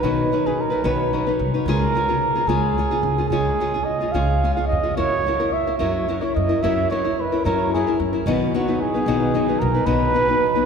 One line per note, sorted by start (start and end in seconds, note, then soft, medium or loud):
0.03 0.22 B1 medium
0.03 0.32 B2 medium
0.03 0.32 D#3 medium
0.03 0.31 F#3 medium
0.03 0.32 C#4 medium
0.03 0.32 D#4 medium
0.03 0.48 B4 medium
0.03 0.33 B4 medium
0.32 0.45 F#3 soft
0.32 0.46 C#4 medium
0.32 0.45 D#4 soft
0.32 0.45 B4 medium
0.46 0.70 F#3 soft
0.46 0.70 C#4 soft
0.46 0.70 D#4 soft
0.46 0.62 G#4 medium
0.46 0.69 B4 soft
0.61 0.89 A#4 medium
0.70 0.83 F#3 soft
0.70 0.84 C#4 soft
0.70 0.84 D#4 soft
0.70 0.84 B4 soft
0.84 1.20 B1 medium
0.84 1.14 B2 medium
0.84 1.14 D#3 medium
0.84 1.12 F#3 medium
0.84 1.12 C#4 medium
0.84 1.13 D#4 medium
0.84 1.13 B4 medium
0.84 1.48 B4 medium
1.13 1.27 F#3 soft
1.13 1.27 C#4 medium
1.13 1.26 D#4 medium
1.13 1.26 B4 medium
1.27 1.54 F#3 soft
1.27 1.53 C#4 soft
1.27 1.53 D#4 soft
1.27 1.53 B4 soft
1.39 1.57 C2 medium
1.54 1.68 F#3 soft
1.54 1.67 C#4 soft
1.54 1.67 D#4 soft
1.54 1.67 B4 soft
1.66 1.85 C#2 medium
1.66 1.96 C#3 medium
1.66 1.94 G#3 medium
1.66 1.95 C#4 medium
1.66 1.95 F4 medium
1.66 1.96 G#4 medium
1.66 2.50 A#4 medium
1.95 2.09 G#3 soft
1.95 2.09 C#4 soft
1.95 2.08 F4 medium
1.95 2.07 G#4 medium
2.09 2.36 C#4 soft
2.09 2.36 F4 soft
2.09 2.34 G#4 soft
2.35 2.48 C#4 soft
2.35 2.48 F4 soft
2.35 2.48 G#4 soft
2.47 2.84 C#2 medium
2.47 2.77 C#3 medium
2.47 2.77 G#3 medium
2.47 2.78 C#4 medium
2.47 2.78 F4 medium
2.47 3.28 G#4 medium
2.47 2.78 G#4 medium
2.78 2.91 G#3 medium
2.78 2.91 C#4 soft
2.78 2.91 F4 soft
2.78 2.90 G#4 medium
2.91 3.18 C#4 soft
2.91 3.18 F4 soft
2.91 3.17 G#4 soft
3.03 3.21 C#2 medium
3.18 3.31 C#4 soft
3.18 3.31 F4 soft
3.18 3.31 G#4 soft
3.29 3.49 C#2 medium
3.29 3.61 C#3 medium
3.29 3.59 G#3 medium
3.29 3.60 C#4 medium
3.29 3.86 G#4 medium
3.33 3.60 F4 medium
3.33 3.60 G#4 medium
3.60 3.74 G#3 medium
3.60 3.74 C#4 medium
3.60 3.74 F4 medium
3.60 3.73 G#4 medium
3.74 4.01 C#4 soft
3.74 4.01 F4 soft
3.74 3.99 G#4 soft
3.85 4.13 D#5 medium
4.01 4.14 C#4 soft
4.01 4.14 F4 soft
4.01 4.14 G#4 soft
4.12 4.51 C#2 medium
4.12 4.43 C#3 medium
4.12 4.43 G#3 medium
4.12 4.43 C#4 medium
4.12 4.44 F4 medium
4.12 4.44 G#4 medium
4.12 4.54 F5 medium
4.44 4.57 G#3 soft
4.44 4.57 C#4 soft
4.44 4.56 F4 medium
4.44 4.55 G#4 soft
4.54 4.83 F4 soft
4.54 4.82 G#4 soft
4.54 4.66 F5 medium
4.58 4.84 C#4 soft
4.67 4.94 D#5 medium
4.72 4.89 F2 medium
4.83 4.96 C#4 soft
4.83 4.97 F4 soft
4.83 4.97 G#4 soft
4.97 5.17 F#2 medium
4.97 5.25 F#3 medium
4.97 5.25 C#4 medium
4.97 5.26 E4 medium
4.97 5.27 A#4 medium
4.97 5.54 C#5 medium
5.26 5.40 F#3 soft
5.26 5.39 C#4 soft
5.26 5.39 E4 soft
5.26 5.38 A#4 medium
5.40 5.67 C#4 soft
5.40 5.66 E4 soft
5.40 5.66 A#4 soft
5.53 5.78 E5 medium
5.67 5.78 C#4 soft
5.67 5.79 E4 soft
5.67 5.79 A#4 soft
5.79 6.17 F#2 medium
5.79 6.07 F#3 medium
5.79 6.08 C#4 medium
5.79 6.08 E4 medium
5.79 6.09 A#4 medium
5.79 6.24 E5 medium
6.08 6.22 F#3 soft
6.08 6.22 C#4 medium
6.08 6.21 E4 soft
6.08 6.20 A#4 soft
6.21 6.49 C#4 soft
6.21 6.48 E4 soft
6.21 6.48 A#4 soft
6.21 6.34 C#5 medium
6.35 6.54 F#2 medium
6.35 6.63 D#5 medium
6.49 6.62 C#4 soft
6.49 6.63 E4 soft
6.49 6.63 A#4 soft
6.62 6.82 F#2 medium
6.62 6.89 F#3 medium
6.62 6.90 C#4 medium
6.62 6.91 E4 medium
6.62 6.91 A#4 medium
6.62 6.90 E5 medium
6.90 7.04 F#3 soft
6.90 7.05 C#4 medium
6.90 7.04 E4 medium
6.90 7.03 A#4 medium
6.90 7.22 C#5 medium
7.05 7.32 C#4 soft
7.05 7.31 E4 soft
7.05 7.31 A#4 soft
7.20 7.44 B4 medium
7.32 7.45 C#4 soft
7.32 7.45 E4 soft
7.32 7.45 A#4 soft
7.45 7.81 F#2 medium
7.45 7.73 F#3 medium
7.45 7.74 C#4 medium
7.45 7.74 E4 medium
7.45 7.72 A#4 medium
7.45 7.75 A#4 medium
7.73 7.87 F#3 medium
7.73 7.88 C#4 medium
7.73 7.87 E4 medium
7.73 7.98 G#4 medium
7.73 7.86 A#4 medium
7.87 8.14 C#4 soft
7.87 8.13 E4 soft
7.87 8.12 A#4 soft
8.00 8.17 F#2 medium
8.13 8.27 C#4 soft
8.13 8.26 E4 soft
8.13 8.26 A#4 soft
8.26 8.44 B1 medium
8.26 8.55 B2 medium
8.26 8.55 D#3 medium
8.26 8.53 F#3 medium
8.26 8.53 B3 medium
8.26 8.54 D#4 medium
8.26 8.54 B4 medium
8.54 8.67 F#3 medium
8.54 8.67 B3 medium
8.54 8.67 D#4 medium
8.54 8.79 F#4 medium
8.54 8.67 B4 medium
8.68 8.94 F#3 soft
8.68 8.94 B3 soft
8.68 8.94 D#4 soft
8.68 8.93 B4 soft
8.81 9.61 G#4 medium
8.94 9.07 F#3 soft
8.94 9.07 B3 soft
8.94 9.07 D#4 soft
8.94 9.07 B4 soft
9.06 9.42 B1 medium
9.06 9.35 B2 medium
9.06 9.35 D#3 medium
9.06 9.33 F#3 medium
9.06 9.34 B3 medium
9.06 9.34 D#4 medium
9.06 9.35 B4 medium
9.34 9.47 F#3 soft
9.34 9.48 B3 medium
9.34 9.48 D#4 medium
9.34 9.47 B4 soft
9.48 9.75 F#3 soft
9.48 9.74 B3 soft
9.48 9.74 D#4 soft
9.48 9.73 B4 soft
9.59 9.78 B1 medium
9.59 9.87 A#4 medium
9.74 9.85 F#3 soft
9.74 9.85 B3 soft
9.74 9.86 D#4 soft
9.74 9.86 B4 soft
9.85 10.05 B1 medium
9.85 10.15 B2 medium
9.85 10.15 D#3 medium
9.85 10.13 F#3 medium
9.85 10.13 B3 medium
9.85 10.14 D#4 medium
9.85 10.66 B4 medium
9.85 10.14 B4 medium
10.14 10.28 F#3 medium
10.14 10.28 B3 soft
10.14 10.28 D#4 soft
10.14 10.27 B4 medium
10.28 10.56 F#3 soft
10.28 10.55 B3 soft
10.28 10.54 D#4 soft
10.28 10.54 B4 soft
10.55 10.66 F#3 soft
10.55 10.66 B3 soft
10.55 10.66 D#4 soft
10.55 10.66 B4 soft